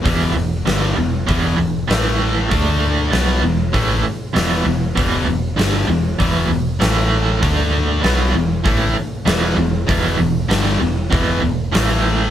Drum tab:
HH |o-o-o-o-|o-o-o-o-|o-o-o-o-|o-o-o-o-|
SD |--o---o-|--o---o-|--o---o-|--o---o-|
BD |o---o---|o---o---|o---o---|o---o---|

HH |o-o-o-o-|
SD |--o---o-|
BD |o---o---|